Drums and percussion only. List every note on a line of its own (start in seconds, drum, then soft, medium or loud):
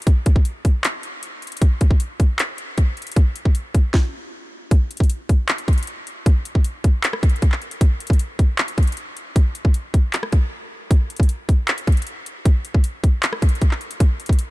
0.02 closed hi-hat medium
0.07 kick loud
0.07 closed hi-hat medium
0.26 kick loud
0.26 closed hi-hat medium
0.36 kick medium
0.45 closed hi-hat medium
0.65 kick medium
0.65 closed hi-hat medium
0.84 clap loud
0.84 closed hi-hat medium
1.03 closed hi-hat medium
1.23 closed hi-hat medium
1.42 closed hi-hat soft
1.47 closed hi-hat medium
1.52 closed hi-hat medium
1.57 closed hi-hat medium
1.62 kick loud
1.62 closed hi-hat medium
1.81 kick loud
1.81 closed hi-hat medium
1.91 kick medium
2.00 closed hi-hat medium
2.20 kick medium
2.20 closed hi-hat medium
2.39 clap loud
2.39 closed hi-hat medium
2.58 closed hi-hat medium
2.78 kick medium
2.78 closed hi-hat medium
2.97 closed hi-hat soft
3.02 closed hi-hat medium
3.07 closed hi-hat medium
3.12 closed hi-hat medium
3.16 kick loud
3.16 closed hi-hat medium
3.36 closed hi-hat medium
3.45 kick medium
3.55 closed hi-hat medium
3.75 kick medium
3.75 closed hi-hat medium
3.94 kick loud
3.94 snare medium
4.71 kick loud
4.71 closed hi-hat medium
4.91 closed hi-hat medium
4.97 kick medium
4.97 closed hi-hat medium
5.04 closed hi-hat medium
5.10 closed hi-hat medium
5.29 kick medium
5.29 closed hi-hat medium
5.49 clap loud
5.49 closed hi-hat medium
5.58 closed hi-hat medium
5.68 kick loud
5.68 closed hi-hat soft
5.73 closed hi-hat medium
5.78 closed hi-hat medium
5.83 closed hi-hat medium
5.87 closed hi-hat medium
6.07 closed hi-hat medium
6.26 kick loud
6.26 closed hi-hat medium
6.45 closed hi-hat medium
6.55 kick medium
6.64 closed hi-hat medium
6.84 kick medium
6.84 closed hi-hat medium
7.03 clap loud
7.03 closed hi-hat medium
7.13 cross-stick loud
7.23 kick loud
7.23 closed hi-hat medium
7.29 closed hi-hat medium
7.36 closed hi-hat soft
7.42 kick medium
7.42 closed hi-hat medium
7.52 clap medium
7.62 closed hi-hat soft
7.71 closed hi-hat medium
7.81 kick loud
7.81 closed hi-hat medium
8.00 closed hi-hat medium
8.07 kick medium
8.07 closed hi-hat medium
8.13 closed hi-hat medium
8.19 closed hi-hat medium
8.39 kick loud
8.39 closed hi-hat medium
8.58 clap loud
8.58 closed hi-hat medium
8.68 closed hi-hat medium
8.78 kick loud
8.78 closed hi-hat soft
8.83 closed hi-hat medium
8.87 closed hi-hat medium
8.92 closed hi-hat medium
8.97 closed hi-hat medium
9.17 closed hi-hat medium
9.36 kick loud
9.36 closed hi-hat medium
9.55 closed hi-hat medium
9.65 kick medium
9.74 closed hi-hat medium
9.94 kick medium
9.94 closed hi-hat medium
10.13 clap loud
10.13 closed hi-hat medium
10.23 cross-stick loud
10.32 kick loud
10.32 closed hi-hat medium
10.91 kick loud
10.91 closed hi-hat medium
11.10 closed hi-hat medium
11.16 kick medium
11.16 closed hi-hat medium
11.23 closed hi-hat medium
11.29 closed hi-hat medium
11.49 kick medium
11.49 closed hi-hat medium
11.68 clap loud
11.68 closed hi-hat medium
11.78 closed hi-hat medium
11.87 kick loud
11.87 closed hi-hat soft
11.92 closed hi-hat soft
11.97 closed hi-hat medium
12.02 closed hi-hat medium
12.07 closed hi-hat medium
12.26 closed hi-hat medium
12.45 kick loud
12.45 closed hi-hat medium
12.65 closed hi-hat medium
12.74 kick medium
12.84 closed hi-hat medium
13.04 kick medium
13.04 closed hi-hat medium
13.23 clap loud
13.23 closed hi-hat medium
13.33 cross-stick loud
13.42 kick loud
13.42 closed hi-hat medium
13.49 closed hi-hat medium
13.55 closed hi-hat soft
13.61 kick medium
13.61 closed hi-hat medium
13.71 clap medium
13.81 closed hi-hat soft
13.91 closed hi-hat medium
14.00 kick loud
14.00 closed hi-hat medium
14.20 closed hi-hat medium
14.26 kick medium
14.26 closed hi-hat medium
14.33 closed hi-hat medium
14.39 closed hi-hat medium